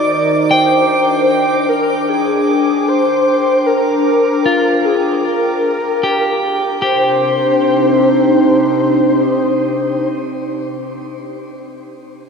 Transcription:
Already playing: ambient pad D#3 D#4 F#4 A#4 A#5, clean electric guitar C5, soft synth lead D5, synth texture D6
0.50 ambient pad D4, soft synth lead C5, clean electric guitar G5
0.64 ambient pad G5
1.69 soft synth lead A#4
2.09 soft synth lead G#4
2.88 soft synth lead C5
3.66 soft synth lead A#4
4.46 clean electric guitar F4
4.85 soft synth lead G#4
5.25 soft synth lead A#4
6.03 clean electric guitar G4
6.82 ambient pad C3, clean electric guitar G4, soft synth lead C5
6.94 ambient pad C4
7.07 ambient pad D4
7.18 ambient pad D#4
7.30 ambient pad G4

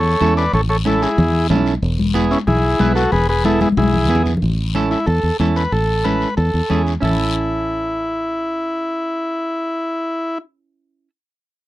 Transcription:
Already playing: fingered electric bass E2, transistor combo organ A4 C#5
0.21 fingered electric bass E2, clean electric guitar C#4 E4 A4, high conga, short guiro
0.37 transistor combo organ B4 D5, short guiro
0.53 fingered electric bass A1, transistor combo organ A4 C#5, low conga, long guiro
0.69 transistor combo organ A4 C#5
0.85 clean electric guitar C#4 E4 A4, transistor combo organ E4 A4, high conga, short guiro
1.02 transistor combo organ E4 G#4, short guiro
1.18 fingered electric bass E2, low conga, long guiro
1.50 fingered electric bass B1, clean electric guitar C#4 E4 A4, high conga, low conga, short guiro
1.66 short guiro
1.82 fingered electric bass E1, long guiro
1.99 high conga
2.14 clean electric guitar B3 E4 G#4, high conga, short guiro
2.31 transistor combo organ C#4 E4, short guiro
2.47 fingered electric bass B1, transistor combo organ E4 G#4, low conga, long guiro
2.79 fingered electric bass B1, clean electric guitar B3 E4 B4, high conga, short guiro
2.95 transistor combo organ F#4 A4, short guiro
3.12 fingered electric bass E1, transistor combo organ G#4 B4, low conga, long guiro
3.29 transistor combo organ G#4 B4
3.45 clean electric guitar B3 E4 G#4, transistor combo organ E4 A4, high conga, short guiro
3.61 transistor combo organ E4 G#4, high conga, short guiro
3.72 high conga
3.77 fingered electric bass B1, transistor combo organ E4 G#4, long guiro
3.83 high conga
3.94 low conga
4.05 low conga
4.09 fingered electric bass E2, clean electric guitar B3 E4 G#4, short guiro
4.15 low conga
4.26 low conga, short guiro
4.37 low conga
4.42 fingered electric bass A1, high conga, long guiro
4.75 clean electric guitar C#4 E4 A4, high conga, short guiro
4.91 transistor combo organ E4, short guiro
5.07 fingered electric bass E2, transistor combo organ A4, high conga, long guiro
5.23 fingered electric bass E2
5.40 fingered electric bass E2, clean electric guitar C#4 E4 A4, high conga, short guiro
5.56 transistor combo organ B4, short guiro
5.72 fingered electric bass A1, transistor combo organ A4, high conga, long guiro
6.04 clean electric guitar C#4 E4 A4, transistor combo organ B4, high conga, short guiro
6.21 short guiro
6.37 fingered electric bass E2, transistor combo organ A4, high conga, long guiro
6.54 fingered electric bass E2
6.70 fingered electric bass E2, clean electric guitar C#4 E4 G#4, high conga, short guiro
6.87 short guiro
7.01 fingered electric bass A1, clean electric guitar C#4 E4 A4, transistor combo organ E4, low conga, long guiro

